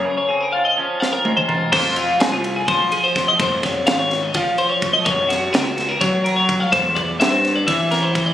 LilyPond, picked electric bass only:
\new Staff \with { instrumentName = "Picked electric bass" } { \clef bass \time 7/8 \key des \major \tempo 4 = 126 r2. r8 | f,4 c,4 f4. | f,4 aes,,4 f4. | ges,4 des,4 ges4. |
e,4 g,4 e4. | }